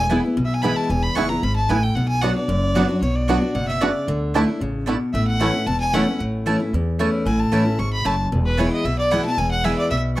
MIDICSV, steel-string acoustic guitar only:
0, 0, Header, 1, 2, 480
1, 0, Start_track
1, 0, Key_signature, 3, "major"
1, 0, Tempo, 265018
1, 1630, Time_signature, 4, 2, 24, 8
1, 18474, End_track
2, 0, Start_track
2, 0, Title_t, "Steel-string acoustic guitar"
2, 0, Program_c, 0, 25
2, 0, Note_on_c, 0, 40, 89
2, 176, Note_on_c, 0, 52, 92
2, 188, Note_on_c, 0, 56, 84
2, 198, Note_on_c, 0, 59, 96
2, 202, Note_on_c, 0, 64, 87
2, 415, Note_off_c, 0, 52, 0
2, 416, Note_off_c, 0, 64, 0
2, 422, Note_off_c, 0, 56, 0
2, 427, Note_off_c, 0, 59, 0
2, 438, Note_on_c, 0, 64, 55
2, 468, Note_on_c, 0, 59, 43
2, 624, Note_off_c, 0, 40, 0
2, 663, Note_off_c, 0, 64, 0
2, 670, Note_on_c, 0, 47, 97
2, 677, Note_off_c, 0, 59, 0
2, 1140, Note_on_c, 0, 52, 86
2, 1158, Note_on_c, 0, 56, 100
2, 1163, Note_on_c, 0, 59, 92
2, 1174, Note_on_c, 0, 64, 102
2, 1582, Note_off_c, 0, 47, 0
2, 1601, Note_off_c, 0, 52, 0
2, 1610, Note_off_c, 0, 56, 0
2, 1612, Note_off_c, 0, 59, 0
2, 1618, Note_off_c, 0, 64, 0
2, 1632, Note_on_c, 0, 40, 100
2, 2110, Note_on_c, 0, 52, 86
2, 2122, Note_on_c, 0, 56, 82
2, 2127, Note_on_c, 0, 59, 100
2, 2142, Note_on_c, 0, 64, 96
2, 2331, Note_off_c, 0, 64, 0
2, 2343, Note_off_c, 0, 52, 0
2, 2349, Note_off_c, 0, 56, 0
2, 2352, Note_off_c, 0, 59, 0
2, 2353, Note_on_c, 0, 64, 58
2, 2383, Note_on_c, 0, 59, 50
2, 2544, Note_off_c, 0, 40, 0
2, 2581, Note_off_c, 0, 64, 0
2, 2594, Note_on_c, 0, 44, 89
2, 2595, Note_off_c, 0, 59, 0
2, 3049, Note_off_c, 0, 44, 0
2, 3070, Note_on_c, 0, 45, 83
2, 3527, Note_off_c, 0, 45, 0
2, 3559, Note_on_c, 0, 47, 92
2, 4023, Note_on_c, 0, 54, 89
2, 4038, Note_on_c, 0, 59, 82
2, 4047, Note_on_c, 0, 62, 89
2, 4059, Note_on_c, 0, 66, 100
2, 4254, Note_off_c, 0, 66, 0
2, 4261, Note_off_c, 0, 54, 0
2, 4268, Note_off_c, 0, 59, 0
2, 4273, Note_off_c, 0, 62, 0
2, 4276, Note_on_c, 0, 66, 55
2, 4308, Note_on_c, 0, 62, 46
2, 4469, Note_off_c, 0, 47, 0
2, 4503, Note_off_c, 0, 66, 0
2, 4506, Note_on_c, 0, 42, 99
2, 4519, Note_off_c, 0, 62, 0
2, 4986, Note_on_c, 0, 54, 97
2, 4997, Note_on_c, 0, 59, 90
2, 5004, Note_on_c, 0, 62, 90
2, 5016, Note_on_c, 0, 66, 113
2, 5201, Note_off_c, 0, 66, 0
2, 5223, Note_off_c, 0, 54, 0
2, 5223, Note_on_c, 0, 66, 70
2, 5228, Note_off_c, 0, 59, 0
2, 5232, Note_off_c, 0, 62, 0
2, 5260, Note_on_c, 0, 62, 55
2, 5423, Note_off_c, 0, 42, 0
2, 5457, Note_off_c, 0, 66, 0
2, 5476, Note_off_c, 0, 62, 0
2, 5480, Note_on_c, 0, 47, 98
2, 5945, Note_on_c, 0, 54, 81
2, 5957, Note_on_c, 0, 59, 94
2, 5968, Note_on_c, 0, 62, 94
2, 5977, Note_on_c, 0, 66, 102
2, 6167, Note_off_c, 0, 66, 0
2, 6183, Note_off_c, 0, 54, 0
2, 6189, Note_off_c, 0, 59, 0
2, 6189, Note_on_c, 0, 66, 62
2, 6195, Note_off_c, 0, 62, 0
2, 6220, Note_on_c, 0, 62, 48
2, 6390, Note_off_c, 0, 47, 0
2, 6421, Note_off_c, 0, 66, 0
2, 6426, Note_on_c, 0, 47, 88
2, 6437, Note_off_c, 0, 62, 0
2, 6887, Note_off_c, 0, 47, 0
2, 6908, Note_on_c, 0, 49, 94
2, 7368, Note_off_c, 0, 49, 0
2, 7394, Note_on_c, 0, 50, 102
2, 7854, Note_off_c, 0, 50, 0
2, 7875, Note_on_c, 0, 50, 82
2, 7886, Note_on_c, 0, 57, 103
2, 7895, Note_on_c, 0, 62, 98
2, 7903, Note_on_c, 0, 64, 100
2, 8082, Note_off_c, 0, 64, 0
2, 8104, Note_on_c, 0, 64, 60
2, 8109, Note_off_c, 0, 50, 0
2, 8114, Note_off_c, 0, 57, 0
2, 8118, Note_off_c, 0, 62, 0
2, 8137, Note_on_c, 0, 62, 41
2, 8339, Note_off_c, 0, 64, 0
2, 8355, Note_off_c, 0, 62, 0
2, 8356, Note_on_c, 0, 49, 85
2, 8812, Note_off_c, 0, 49, 0
2, 8828, Note_on_c, 0, 47, 99
2, 9288, Note_off_c, 0, 47, 0
2, 9323, Note_on_c, 0, 45, 96
2, 9791, Note_on_c, 0, 52, 105
2, 9801, Note_on_c, 0, 57, 89
2, 9812, Note_on_c, 0, 61, 84
2, 9823, Note_on_c, 0, 64, 102
2, 10007, Note_off_c, 0, 64, 0
2, 10026, Note_off_c, 0, 52, 0
2, 10029, Note_on_c, 0, 64, 58
2, 10031, Note_off_c, 0, 57, 0
2, 10037, Note_off_c, 0, 61, 0
2, 10062, Note_on_c, 0, 61, 50
2, 10231, Note_off_c, 0, 45, 0
2, 10261, Note_off_c, 0, 64, 0
2, 10271, Note_on_c, 0, 40, 92
2, 10278, Note_off_c, 0, 61, 0
2, 10744, Note_on_c, 0, 52, 98
2, 10754, Note_on_c, 0, 57, 97
2, 10762, Note_on_c, 0, 61, 113
2, 10770, Note_on_c, 0, 64, 97
2, 10960, Note_off_c, 0, 64, 0
2, 10981, Note_on_c, 0, 64, 62
2, 10983, Note_off_c, 0, 52, 0
2, 10987, Note_off_c, 0, 57, 0
2, 10991, Note_off_c, 0, 61, 0
2, 11011, Note_on_c, 0, 61, 55
2, 11185, Note_off_c, 0, 40, 0
2, 11217, Note_off_c, 0, 64, 0
2, 11232, Note_off_c, 0, 61, 0
2, 11236, Note_on_c, 0, 45, 97
2, 11702, Note_on_c, 0, 52, 81
2, 11713, Note_on_c, 0, 57, 97
2, 11718, Note_on_c, 0, 61, 92
2, 11728, Note_on_c, 0, 64, 98
2, 11927, Note_off_c, 0, 64, 0
2, 11941, Note_off_c, 0, 52, 0
2, 11947, Note_off_c, 0, 57, 0
2, 11949, Note_off_c, 0, 61, 0
2, 11949, Note_on_c, 0, 64, 57
2, 11979, Note_on_c, 0, 61, 43
2, 12147, Note_off_c, 0, 45, 0
2, 12180, Note_off_c, 0, 64, 0
2, 12196, Note_off_c, 0, 61, 0
2, 12211, Note_on_c, 0, 40, 97
2, 12666, Note_on_c, 0, 52, 85
2, 12672, Note_on_c, 0, 57, 101
2, 12686, Note_on_c, 0, 61, 99
2, 12693, Note_on_c, 0, 64, 97
2, 13114, Note_off_c, 0, 40, 0
2, 13126, Note_off_c, 0, 52, 0
2, 13129, Note_off_c, 0, 57, 0
2, 13136, Note_off_c, 0, 61, 0
2, 13140, Note_off_c, 0, 64, 0
2, 13157, Note_on_c, 0, 45, 101
2, 13617, Note_on_c, 0, 52, 94
2, 13631, Note_on_c, 0, 57, 91
2, 13637, Note_on_c, 0, 61, 93
2, 13647, Note_on_c, 0, 64, 104
2, 13835, Note_off_c, 0, 64, 0
2, 13857, Note_on_c, 0, 64, 56
2, 13858, Note_off_c, 0, 52, 0
2, 13865, Note_off_c, 0, 57, 0
2, 13868, Note_off_c, 0, 61, 0
2, 13887, Note_on_c, 0, 61, 39
2, 14067, Note_off_c, 0, 45, 0
2, 14094, Note_off_c, 0, 64, 0
2, 14109, Note_off_c, 0, 61, 0
2, 14113, Note_on_c, 0, 44, 89
2, 14569, Note_off_c, 0, 44, 0
2, 14585, Note_on_c, 0, 42, 97
2, 15045, Note_off_c, 0, 42, 0
2, 15073, Note_on_c, 0, 40, 95
2, 15547, Note_on_c, 0, 52, 90
2, 15560, Note_on_c, 0, 56, 89
2, 15566, Note_on_c, 0, 59, 93
2, 15579, Note_on_c, 0, 64, 106
2, 15984, Note_off_c, 0, 40, 0
2, 16005, Note_off_c, 0, 52, 0
2, 16012, Note_off_c, 0, 56, 0
2, 16014, Note_off_c, 0, 59, 0
2, 16021, Note_off_c, 0, 64, 0
2, 16039, Note_on_c, 0, 47, 95
2, 16511, Note_on_c, 0, 52, 86
2, 16527, Note_on_c, 0, 56, 92
2, 16531, Note_on_c, 0, 59, 97
2, 16547, Note_on_c, 0, 64, 112
2, 16731, Note_off_c, 0, 64, 0
2, 16744, Note_off_c, 0, 52, 0
2, 16752, Note_off_c, 0, 56, 0
2, 16752, Note_on_c, 0, 64, 63
2, 16753, Note_off_c, 0, 59, 0
2, 16785, Note_on_c, 0, 59, 48
2, 16947, Note_off_c, 0, 47, 0
2, 16980, Note_off_c, 0, 64, 0
2, 16996, Note_off_c, 0, 59, 0
2, 16997, Note_on_c, 0, 40, 95
2, 17466, Note_on_c, 0, 52, 84
2, 17474, Note_on_c, 0, 56, 94
2, 17482, Note_on_c, 0, 59, 89
2, 17494, Note_on_c, 0, 64, 107
2, 17905, Note_off_c, 0, 40, 0
2, 17923, Note_off_c, 0, 52, 0
2, 17927, Note_off_c, 0, 56, 0
2, 17931, Note_off_c, 0, 59, 0
2, 17938, Note_off_c, 0, 64, 0
2, 17943, Note_on_c, 0, 47, 84
2, 18474, Note_off_c, 0, 47, 0
2, 18474, End_track
0, 0, End_of_file